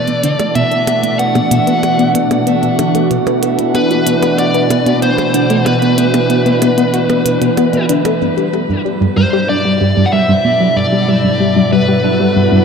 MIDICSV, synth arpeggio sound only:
0, 0, Header, 1, 2, 480
1, 0, Start_track
1, 0, Tempo, 638298
1, 417, Time_signature, 4, 2, 24, 8
1, 9511, End_track
2, 0, Start_track
2, 0, Title_t, "Synth arpeggio sound"
2, 0, Program_c, 0, 84
2, 57, Note_on_c, 0, 47, 71
2, 91, Note_off_c, 0, 47, 0
2, 176, Note_on_c, 0, 50, 73
2, 263, Note_off_c, 0, 50, 0
2, 296, Note_on_c, 0, 57, 69
2, 354, Note_off_c, 0, 57, 0
2, 415, Note_on_c, 0, 47, 80
2, 474, Note_off_c, 0, 47, 0
2, 536, Note_on_c, 0, 59, 75
2, 623, Note_off_c, 0, 59, 0
2, 656, Note_on_c, 0, 59, 72
2, 714, Note_off_c, 0, 59, 0
2, 776, Note_on_c, 0, 47, 72
2, 811, Note_off_c, 0, 47, 0
2, 897, Note_on_c, 0, 59, 79
2, 955, Note_off_c, 0, 59, 0
2, 1016, Note_on_c, 0, 47, 97
2, 1051, Note_off_c, 0, 47, 0
2, 1137, Note_on_c, 0, 47, 96
2, 1194, Note_off_c, 0, 47, 0
2, 1256, Note_on_c, 0, 59, 96
2, 1291, Note_off_c, 0, 59, 0
2, 1377, Note_on_c, 0, 66, 79
2, 1435, Note_off_c, 0, 66, 0
2, 1496, Note_on_c, 0, 59, 74
2, 1583, Note_off_c, 0, 59, 0
2, 1616, Note_on_c, 0, 47, 73
2, 1703, Note_off_c, 0, 47, 0
2, 1737, Note_on_c, 0, 47, 98
2, 1795, Note_off_c, 0, 47, 0
2, 1856, Note_on_c, 0, 59, 77
2, 1914, Note_off_c, 0, 59, 0
2, 1977, Note_on_c, 0, 47, 74
2, 2012, Note_off_c, 0, 47, 0
2, 2097, Note_on_c, 0, 50, 73
2, 2184, Note_off_c, 0, 50, 0
2, 2217, Note_on_c, 0, 57, 73
2, 2275, Note_off_c, 0, 57, 0
2, 2337, Note_on_c, 0, 47, 80
2, 2395, Note_off_c, 0, 47, 0
2, 2457, Note_on_c, 0, 59, 75
2, 2544, Note_off_c, 0, 59, 0
2, 2576, Note_on_c, 0, 59, 74
2, 2634, Note_off_c, 0, 59, 0
2, 2697, Note_on_c, 0, 47, 75
2, 2731, Note_off_c, 0, 47, 0
2, 2817, Note_on_c, 0, 59, 80
2, 2875, Note_off_c, 0, 59, 0
2, 2938, Note_on_c, 0, 47, 97
2, 2972, Note_off_c, 0, 47, 0
2, 3056, Note_on_c, 0, 47, 97
2, 3114, Note_off_c, 0, 47, 0
2, 3176, Note_on_c, 0, 59, 98
2, 3211, Note_off_c, 0, 59, 0
2, 3296, Note_on_c, 0, 66, 81
2, 3354, Note_off_c, 0, 66, 0
2, 3416, Note_on_c, 0, 59, 74
2, 3503, Note_off_c, 0, 59, 0
2, 3536, Note_on_c, 0, 47, 75
2, 3623, Note_off_c, 0, 47, 0
2, 3656, Note_on_c, 0, 47, 96
2, 3714, Note_off_c, 0, 47, 0
2, 3776, Note_on_c, 0, 59, 79
2, 3834, Note_off_c, 0, 59, 0
2, 3896, Note_on_c, 0, 47, 75
2, 3931, Note_off_c, 0, 47, 0
2, 4016, Note_on_c, 0, 50, 74
2, 4103, Note_off_c, 0, 50, 0
2, 4136, Note_on_c, 0, 57, 74
2, 4194, Note_off_c, 0, 57, 0
2, 4256, Note_on_c, 0, 47, 79
2, 4314, Note_off_c, 0, 47, 0
2, 4375, Note_on_c, 0, 59, 79
2, 4463, Note_off_c, 0, 59, 0
2, 4496, Note_on_c, 0, 59, 73
2, 4554, Note_off_c, 0, 59, 0
2, 4616, Note_on_c, 0, 47, 73
2, 4651, Note_off_c, 0, 47, 0
2, 4736, Note_on_c, 0, 59, 78
2, 4794, Note_off_c, 0, 59, 0
2, 4855, Note_on_c, 0, 47, 98
2, 4891, Note_off_c, 0, 47, 0
2, 4975, Note_on_c, 0, 47, 97
2, 5034, Note_off_c, 0, 47, 0
2, 5096, Note_on_c, 0, 59, 97
2, 5131, Note_off_c, 0, 59, 0
2, 5216, Note_on_c, 0, 66, 81
2, 5274, Note_off_c, 0, 66, 0
2, 5335, Note_on_c, 0, 59, 77
2, 5423, Note_off_c, 0, 59, 0
2, 5455, Note_on_c, 0, 47, 75
2, 5543, Note_off_c, 0, 47, 0
2, 5575, Note_on_c, 0, 47, 97
2, 5634, Note_off_c, 0, 47, 0
2, 5697, Note_on_c, 0, 59, 83
2, 5755, Note_off_c, 0, 59, 0
2, 5817, Note_on_c, 0, 47, 76
2, 5851, Note_off_c, 0, 47, 0
2, 5936, Note_on_c, 0, 50, 75
2, 6023, Note_off_c, 0, 50, 0
2, 6056, Note_on_c, 0, 57, 72
2, 6114, Note_off_c, 0, 57, 0
2, 6176, Note_on_c, 0, 43, 78
2, 6234, Note_off_c, 0, 43, 0
2, 6295, Note_on_c, 0, 55, 77
2, 6383, Note_off_c, 0, 55, 0
2, 6416, Note_on_c, 0, 55, 71
2, 6474, Note_off_c, 0, 55, 0
2, 6536, Note_on_c, 0, 43, 74
2, 6571, Note_off_c, 0, 43, 0
2, 6656, Note_on_c, 0, 55, 82
2, 6714, Note_off_c, 0, 55, 0
2, 6777, Note_on_c, 0, 43, 98
2, 6811, Note_off_c, 0, 43, 0
2, 6897, Note_on_c, 0, 43, 97
2, 6955, Note_off_c, 0, 43, 0
2, 7017, Note_on_c, 0, 55, 102
2, 7051, Note_off_c, 0, 55, 0
2, 7137, Note_on_c, 0, 62, 82
2, 7195, Note_off_c, 0, 62, 0
2, 7257, Note_on_c, 0, 55, 75
2, 7344, Note_off_c, 0, 55, 0
2, 7377, Note_on_c, 0, 43, 76
2, 7464, Note_off_c, 0, 43, 0
2, 7497, Note_on_c, 0, 43, 98
2, 7555, Note_off_c, 0, 43, 0
2, 7616, Note_on_c, 0, 55, 79
2, 7674, Note_off_c, 0, 55, 0
2, 7736, Note_on_c, 0, 43, 75
2, 7771, Note_off_c, 0, 43, 0
2, 7856, Note_on_c, 0, 47, 74
2, 7943, Note_off_c, 0, 47, 0
2, 7975, Note_on_c, 0, 54, 73
2, 8034, Note_off_c, 0, 54, 0
2, 8096, Note_on_c, 0, 43, 78
2, 8154, Note_off_c, 0, 43, 0
2, 8216, Note_on_c, 0, 55, 77
2, 8303, Note_off_c, 0, 55, 0
2, 8335, Note_on_c, 0, 55, 75
2, 8394, Note_off_c, 0, 55, 0
2, 8456, Note_on_c, 0, 43, 75
2, 8491, Note_off_c, 0, 43, 0
2, 8575, Note_on_c, 0, 55, 82
2, 8634, Note_off_c, 0, 55, 0
2, 8695, Note_on_c, 0, 43, 99
2, 8730, Note_off_c, 0, 43, 0
2, 8816, Note_on_c, 0, 43, 101
2, 8874, Note_off_c, 0, 43, 0
2, 8935, Note_on_c, 0, 55, 99
2, 8971, Note_off_c, 0, 55, 0
2, 9055, Note_on_c, 0, 62, 78
2, 9114, Note_off_c, 0, 62, 0
2, 9175, Note_on_c, 0, 55, 75
2, 9262, Note_off_c, 0, 55, 0
2, 9295, Note_on_c, 0, 43, 77
2, 9383, Note_off_c, 0, 43, 0
2, 9416, Note_on_c, 0, 43, 98
2, 9474, Note_off_c, 0, 43, 0
2, 9511, End_track
0, 0, End_of_file